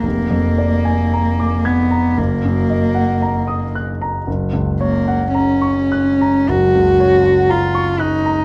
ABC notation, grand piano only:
X:1
M:4/4
L:1/16
Q:1/4=57
K:Gb
V:1 name="Grand piano"
F,,, F,, =d a b =d' a' b G,,, G,, e g b e' g' b | G,,, D,, d g b d' g' b G,,, D,, d g b d' g' b |]